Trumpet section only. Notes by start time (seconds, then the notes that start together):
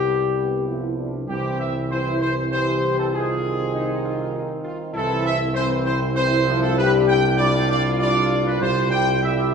Already playing: G4
1.29 G4
1.59 E5
1.90 C5
2.20 C5
2.52 C5
2.98 A4
3.13 G#4
4.94 A4
5.25 E5
5.54 C5
5.85 C5
6.15 C5
6.62 A4
6.77 B4
7.08 G5
7.38 D5
7.69 D5
7.99 D5
8.46 B4
8.61 C5
8.90 G5
9.22 E5